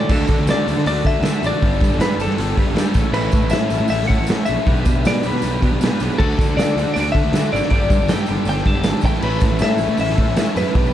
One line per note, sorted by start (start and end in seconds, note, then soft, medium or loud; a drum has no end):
0.00 0.10 D5 loud
0.09 0.24 D2 medium
0.09 0.47 D3 loud
0.09 0.49 D4 loud
0.09 0.49 F#4 loud
0.09 0.50 A4 loud
0.09 0.50 A4 medium
0.09 kick loud
0.09 crash loud
0.09 tambourine soft
0.20 tambourine soft
0.27 0.36 D3 medium
0.27 kick loud
0.27 open hi-hat medium
0.27 tambourine medium
0.38 0.51 D2 medium
0.38 tambourine soft
0.47 0.66 D3 medium
0.47 0.63 D3 loud
0.47 0.67 D4 medium
0.47 0.67 F#4 medium
0.47 0.69 A4 loud
0.47 0.86 D5 medium
0.47 snare loud
0.47 open hi-hat medium
0.47 tambourine loud
0.67 0.75 D2 medium
0.67 0.86 D3 medium
0.67 0.87 D4 medium
0.67 0.87 F#4 medium
0.67 0.89 A4 medium
0.67 open hi-hat medium
0.67 tambourine medium
0.77 0.84 D3 medium
0.77 snare soft
0.77 tambourine soft
0.86 1.01 D2 loud
0.86 1.23 D3 loud
0.86 1.24 D4 loud
0.86 1.25 F#4 loud
0.86 1.26 A4 loud
0.86 1.06 D5 loud
0.86 open hi-hat medium
0.86 tambourine medium
1.04 1.12 D3 medium
1.04 1.45 E5 loud
1.04 kick medium
1.04 open hi-hat medium
1.08 tambourine soft
1.14 1.22 D2 medium
1.22 1.30 D3 loud
1.22 1.42 D3 medium
1.22 1.43 D4 medium
1.22 1.43 F#4 medium
1.22 snare loud
1.22 open hi-hat medium
1.22 tambourine loud
1.26 1.44 A4 medium
1.35 tambourine soft
1.43 1.50 A1 medium
1.43 1.61 D3 medium
1.43 1.62 D4 loud
1.43 1.62 F#4 medium
1.43 1.64 A4 medium
1.43 2.01 D5 loud
1.43 open hi-hat medium
1.43 tambourine medium
1.62 1.78 G1 medium
1.62 1.99 G3 medium
1.62 2.00 D4 loud
1.62 2.00 G4 medium
1.62 2.01 A4 loud
1.62 kick loud
1.62 open hi-hat medium
1.62 tambourine soft
1.73 tambourine soft
1.80 1.89 G2 medium
1.80 kick loud
1.80 open hi-hat medium
1.80 tambourine medium
1.89 2.00 G1 medium
1.89 tambourine soft
1.99 2.14 G2 loud
1.99 2.19 G3 medium
1.99 2.19 D4 medium
1.99 2.20 G4 medium
1.99 2.22 A4 loud
1.99 2.21 B4 medium
1.99 snare loud
1.99 open hi-hat medium
1.99 tambourine loud
2.17 2.25 G1 medium
2.17 2.38 G3 medium
2.17 2.39 D4 medium
2.17 open hi-hat medium
2.17 tambourine medium
2.21 2.38 G4 medium
2.21 2.56 A4 medium
2.21 2.40 A4 medium
2.27 2.35 G2 medium
2.27 snare soft
2.27 tambourine soft
2.38 2.53 G1 loud
2.38 2.76 G3 medium
2.38 2.77 D4 loud
2.38 2.77 G4 loud
2.38 2.78 A4 loud
2.38 open hi-hat medium
2.38 tambourine medium
2.57 2.65 G2 medium
2.57 kick medium
2.57 open hi-hat medium
2.57 tambourine soft
2.66 2.74 G1 medium
2.75 2.83 G2 loud
2.75 2.95 G3 medium
2.75 2.95 D4 medium
2.75 2.96 G4 medium
2.75 2.98 A4 medium
2.75 snare loud
2.75 open hi-hat medium
2.75 tambourine medium
2.86 tambourine soft
2.94 3.03 A1 medium
2.94 3.13 A2 loud
2.94 3.15 A3 loud
2.94 3.15 C#4 loud
2.94 3.15 E4 loud
2.94 3.17 A4 loud
2.94 kick loud
2.94 open hi-hat medium
2.94 tambourine medium
3.13 3.28 A1 medium
3.13 3.52 A2 loud
3.13 3.54 A3 loud
3.13 3.53 C#4 loud
3.13 3.54 E4 loud
3.13 3.54 B4 medium
3.13 crash loud
3.13 tambourine soft
3.17 3.55 A4 loud
3.23 tambourine soft
3.32 3.41 A2 loud
3.32 kick loud
3.32 open hi-hat medium
3.32 tambourine medium
3.42 3.54 A1 loud
3.42 tambourine soft
3.50 3.67 A2 loud
3.50 3.71 A2 medium
3.50 3.89 E5 medium
3.50 snare loud
3.50 open hi-hat medium
3.50 tambourine loud
3.54 3.72 A3 medium
3.54 3.72 C#4 medium
3.54 3.72 E4 medium
3.54 3.74 A4 medium
3.60 tambourine soft
3.70 3.79 A1 medium
3.70 3.89 A2 medium
3.70 3.90 A3 medium
3.70 3.90 C#4 medium
3.70 3.90 E4 medium
3.70 open hi-hat medium
3.70 tambourine medium
3.74 3.92 A4 medium
3.79 3.88 A2 medium
3.79 tambourine soft
3.88 4.05 A1 loud
3.88 4.27 A2 medium
3.88 4.28 A3 medium
3.88 4.28 C#4 medium
3.88 4.29 E4 loud
3.88 4.07 E5 medium
3.88 open hi-hat medium
3.88 tambourine medium
3.92 4.30 A4 loud
4.02 snare soft
4.08 4.17 A2 medium
4.08 4.44 F#5 loud
4.08 kick medium
4.08 open hi-hat medium
4.08 tambourine soft
4.20 4.28 A1 medium
4.27 4.45 A2 medium
4.27 4.37 A2 loud
4.27 4.47 A3 medium
4.27 4.47 C#4 medium
4.27 4.47 E4 medium
4.27 4.48 A4 medium
4.27 snare loud
4.27 open hi-hat medium
4.27 tambourine loud
4.45 4.66 A2 medium
4.45 4.67 A3 medium
4.45 4.66 C#4 medium
4.45 4.66 E4 loud
4.45 4.68 A4 loud
4.45 5.06 E5 loud
4.45 open hi-hat medium
4.45 tambourine medium
4.49 4.56 A#1 medium
4.66 4.81 B1 medium
4.66 5.04 B3 medium
4.66 5.06 D4 medium
4.66 5.05 G4 loud
4.66 5.06 B4 loud
4.66 kick loud
4.66 open hi-hat medium
4.66 tambourine soft
4.77 tambourine soft
4.85 4.93 B2 medium
4.85 kick loud
4.85 open hi-hat medium
4.85 tambourine medium
4.96 5.08 B1 medium
5.05 5.21 B2 loud
5.05 5.23 B3 medium
5.05 5.25 D4 medium
5.05 5.25 G4 medium
5.05 5.25 B4 medium
5.05 5.26 D5 medium
5.05 snare loud
5.05 open hi-hat medium
5.05 tambourine loud
5.15 tambourine soft
5.23 5.32 B1 medium
5.23 5.42 B3 medium
5.23 5.44 D4 medium
5.23 5.43 G4 medium
5.23 5.61 B4 medium
5.23 5.44 B4 medium
5.23 open hi-hat medium
5.23 tambourine medium
5.32 5.40 B2 medium
5.32 snare soft
5.32 tambourine soft
5.42 5.58 B1 medium
5.42 5.81 B3 loud
5.42 5.82 D4 medium
5.42 5.82 G4 loud
5.42 5.82 B4 loud
5.42 open hi-hat medium
5.42 tambourine medium
5.53 tambourine soft
5.62 5.70 B2 medium
5.62 kick medium
5.62 open hi-hat medium
5.62 tambourine soft
5.71 5.79 B1 medium
5.80 5.88 B2 loud
5.80 6.00 B3 medium
5.80 6.01 D4 medium
5.80 6.01 G4 medium
5.80 6.01 B4 medium
5.80 snare loud
5.80 open hi-hat medium
5.80 tambourine loud
5.90 tambourine soft
6.00 6.08 B1 medium
6.00 6.19 B3 medium
6.00 6.21 D4 medium
6.00 6.19 G4 medium
6.00 6.19 B4 loud
6.00 open hi-hat medium
6.00 tambourine medium
6.12 tambourine soft
6.18 6.34 D2 medium
6.18 6.58 D3 loud
6.18 6.59 D4 loud
6.18 6.59 F#4 loud
6.18 6.58 A4 medium
6.18 6.59 A4 loud
6.18 9.04 D5 medium
6.18 kick loud
6.18 tambourine soft
6.18 crash loud
6.23 9.04 A4 medium
6.23 7.72 F#5 medium
6.23 9.04 D6 medium
6.32 tambourine soft
6.39 6.46 D3 medium
6.39 kick loud
6.39 open hi-hat medium
6.39 tambourine medium
6.48 6.59 D2 medium
6.57 6.72 D3 loud
6.57 6.78 D3 medium
6.57 6.78 D4 medium
6.57 6.79 F#4 medium
6.57 6.80 A4 medium
6.57 6.92 D5 medium
6.57 snare loud
6.57 open hi-hat medium
6.57 tambourine loud
6.70 tambourine soft
6.76 6.84 D2 medium
6.76 6.96 D3 medium
6.76 6.96 D4 medium
6.76 open hi-hat medium
6.76 tambourine medium
6.80 6.97 F#4 medium
6.80 6.98 A4 medium
6.86 6.94 D3 medium
6.86 tambourine soft
6.94 7.11 D2 loud
6.94 7.34 D3 loud
6.94 7.35 D4 loud
6.94 7.12 D5 medium
6.94 open hi-hat loud
6.94 tambourine medium
6.98 7.36 F#4 loud
6.98 7.37 A4 loud
7.12 7.22 D3 medium
7.12 7.52 E5 loud
7.12 kick medium
7.12 open hi-hat medium
7.18 tambourine soft
7.24 7.32 D2 medium
7.32 7.40 D3 loud
7.32 7.53 D3 medium
7.32 7.53 D4 medium
7.32 snare loud
7.32 open hi-hat medium
7.32 tambourine loud
7.37 7.54 F#4 medium
7.37 7.55 A4 medium
7.52 7.61 G#1 medium
7.52 7.72 D3 medium
7.52 7.72 D4 loud
7.52 7.72 F#4 medium
7.52 7.74 A4 loud
7.52 7.69 D5 medium
7.52 open hi-hat medium
7.52 tambourine medium
7.63 snare soft
7.63 tambourine soft
7.70 7.86 G1 medium
7.70 8.10 G3 loud
7.70 8.10 D5 loud
7.70 9.04 G5 medium
7.70 kick loud
7.70 open hi-hat medium
7.74 8.10 D4 loud
7.74 8.11 G4 loud
7.74 8.12 A4 loud
7.74 tambourine soft
7.82 tambourine soft
7.90 7.98 G2 medium
7.90 kick loud
7.90 open hi-hat medium
7.90 tambourine medium
8.00 8.11 G1 loud
8.00 tambourine soft
8.08 8.24 G2 loud
8.08 8.29 G3 medium
8.08 8.29 D4 medium
8.08 8.30 G4 medium
8.08 8.48 G5 loud
8.08 snare loud
8.08 open hi-hat medium
8.08 tambourine medium
8.12 8.31 A4 medium
8.18 tambourine soft
8.26 8.37 G1 medium
8.26 8.47 G3 medium
8.26 8.48 D4 medium
8.26 open hi-hat medium
8.26 tambourine medium
8.31 8.49 G4 medium
8.31 8.51 A4 medium
8.36 8.45 G2 medium
8.36 tambourine soft
8.45 8.61 G1 loud
8.45 8.84 G3 medium
8.45 8.66 G5 loud
8.45 open hi-hat medium
8.45 tambourine medium
8.49 8.85 D4 loud
8.49 8.86 G4 loud
8.49 8.87 A4 loud
8.57 snare soft
8.65 8.74 G2 medium
8.65 9.05 A5 loud
8.65 kick medium
8.65 open hi-hat medium
8.65 tambourine soft
8.74 8.83 G1 medium
8.83 8.92 G#1 loud
8.83 9.04 G3 medium
8.83 9.04 D4 medium
8.83 9.04 G4 medium
8.83 snare loud
8.83 open hi-hat medium
8.83 tambourine medium
8.87 9.08 A4 medium
9.01 9.12 A1 medium
9.01 10.74 B4 medium
9.01 10.74 E5 medium
9.01 10.93 A5 medium
9.01 10.74 C#6 medium
9.01 kick loud
9.01 open hi-hat medium
9.01 tambourine medium
9.06 9.22 A2 loud
9.06 9.23 E3 loud
9.06 9.24 A3 loud
9.06 9.24 C#4 loud
9.06 9.25 E4 loud
9.06 9.25 A4 loud
9.06 9.23 G5 loud
9.14 snare soft
9.22 9.37 A1 medium
9.22 9.60 A2 medium
9.22 9.60 E3 loud
9.22 9.61 A3 loud
9.22 9.61 C#4 loud
9.22 9.59 B4 loud
9.22 tambourine soft
9.22 crash medium
9.26 9.62 E4 loud
9.26 9.63 A4 loud
9.31 tambourine soft
9.40 9.50 A2 loud
9.40 kick loud
9.40 open hi-hat medium
9.40 tambourine medium
9.49 9.62 A1 medium
9.49 tambourine soft
9.59 9.76 A2 loud
9.59 9.79 A2 medium
9.59 9.80 E3 medium
9.59 9.81 A3 medium
9.59 9.82 C#4 medium
9.59 10.00 E5 medium
9.59 snare loud
9.59 open hi-hat medium
9.59 tambourine medium
9.63 9.82 E4 medium
9.63 9.83 A4 medium
9.78 9.87 A1 medium
9.78 9.98 A2 medium
9.78 9.98 E3 medium
9.78 10.00 A3 medium
9.78 open hi-hat medium
9.78 tambourine medium
9.83 10.00 C#4 medium
9.83 10.00 E4 medium
9.83 10.01 A4 medium
9.88 9.97 A2 medium
9.88 tambourine soft
9.97 10.14 A1 medium
9.97 10.35 A2 medium
9.97 10.36 E3 loud
9.97 10.37 A3 loud
9.97 10.37 C#4 loud
9.97 10.54 E5 medium
9.97 open hi-hat medium
9.97 tambourine medium
10.02 10.38 E4 loud
10.02 10.39 A4 loud
10.10 snare soft
10.17 10.26 A2 medium
10.17 kick medium
10.17 open hi-hat medium
10.17 tambourine soft
10.27 10.35 A1 medium
10.36 10.55 A2 medium
10.36 10.45 A2 loud
10.36 10.56 E3 medium
10.36 10.57 A3 medium
10.36 10.57 C#4 medium
10.36 10.57 E4 medium
10.36 10.58 A4 medium
10.36 snare loud
10.36 open hi-hat medium
10.36 tambourine medium
10.56 10.64 F#2 medium
10.56 10.75 A2 medium
10.56 10.75 E3 medium
10.56 10.74 A3 medium
10.56 10.75 C#4 loud
10.56 10.76 E4 loud
10.56 10.76 A4 medium
10.56 10.93 B4 medium
10.56 open hi-hat medium
10.56 tambourine medium
10.65 snare soft
10.65 tambourine soft
10.75 10.90 B1 medium
10.75 10.93 B3 loud
10.75 10.93 D4 loud
10.75 10.93 G4 medium
10.75 10.93 B4 loud
10.75 10.93 B4 medium
10.75 10.93 G5 medium
10.75 10.93 D6 medium
10.75 kick loud
10.75 open hi-hat medium
10.75 tambourine soft
10.86 tambourine soft